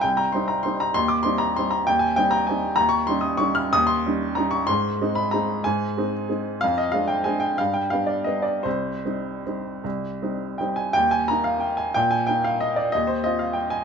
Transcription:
\new Staff \with { instrumentName = "Upright piano" } { \time 3/4 \key c \minor \tempo 4 = 187 << { g''8 bes''8 c'''8 bes''8 c'''8 bes''8 | c'''8 d'''8 c'''8 bes''8 c'''8 bes''8 | g''8 aes''8 g''8 bes''8 aes''4 | bes''8 des'''8 c'''8 ees'''8 des'''8 f'''8 |
ees'''8 c'''4. bes''8 des'''8 | c'''4. b''8 bes''4 | aes''4. r4. | f''8 ees''8 f''8 g''8 aes''8 g''8 |
f''8 g''8 f''8 d''8 ees''8 d''8 | c''2.~ | c''2 g''8 aes''8 | \key ees \major g''8 aes''8 bes''8 f''8 g''8 aes''8 |
g''8 aes''8 g''8 f''8 ees''8 d''8 | ees''8 c''8 ees''8 f''8 g''8 aes''8 | } \\ { c,4 <g c' ees'>4 <g c' ees'>4 | ees,4 <g c' ees'>4 <g c' ees'>4 | ees,4 <g c' ees'>4 <g c' ees'>4 | ees,4 <g des' ees'>4 <g des' ees'>4 |
ees,4 <g des' ees'>4 <g des' ees'>4 | aes,4 <aes c' ees'>4 <aes c' ees'>4 | aes,4 <aes c' ees'>4 <aes c' ees'>4 | f,4 <aes c' d'>4 <aes c' d'>4 |
g,4 <g b d'>4 <g b d'>4 | c,4 <g c' ees'>4 <g c' ees'>4 | c,4 <g c' ees'>4 <g c' ees'>4 | ees,4 <bes ees'>2 |
bes,4 <bes ees'>2 | ees,4 <c' f'>2 | } >> }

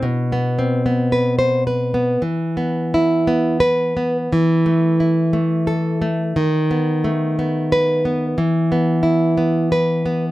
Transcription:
\new Staff \with { instrumentName = "Nylon-string guitar" } { \time 2/4 \key b \phrygian \tempo 4 = 58 << { r4 r16 c''16 r8 | r4 \tuplet 3/2 { r8 b'4 } | r4 \tuplet 3/2 { r8 a'4 } | r4 \tuplet 3/2 { r8 b'4 } |
r4 \tuplet 3/2 { r8 b'4 } | } \\ { b,16 b16 c'16 b16 b'8 b'16 b16 | \tuplet 3/2 { e8 b8 e'8 b4 b8 } | \tuplet 3/2 { e8 a8 e'8 a4 a8 } | \tuplet 3/2 { dis8 b8 a8 b4 b8 } |
\tuplet 3/2 { e8 b8 e'8 b4 b8 } | } >> }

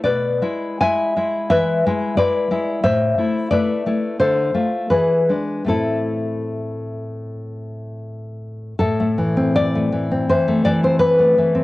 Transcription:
\new Staff \with { instrumentName = "Nylon-string guitar" } { \time 4/4 \key a \minor \tempo 4 = 83 << { <b' d''>4 <e'' gis''>4 <b' e''>4 <b' d''>4 | <c'' e''>4 <b' d''>4 <a' c''>4 <gis' b'>4 | <e' a'>2. r4 | a'4 d''4 c''8 d''16 c''16 b'4 | } \\ { b,8 <gis e'>8 <gis e'>8 <gis e'>8 e8 <gis e'>8 <gis e'>8 <gis e'>8 | a,8 <a e'>8 <a e'>8 <a e'>8 d8 <a f'>8 e8 <gis d'>8 | <a, a c'>1 | a,16 a16 e16 c'8 a16 e16 c'16 e16 a16 e16 c'8 a16 e16 c'16 | } >> }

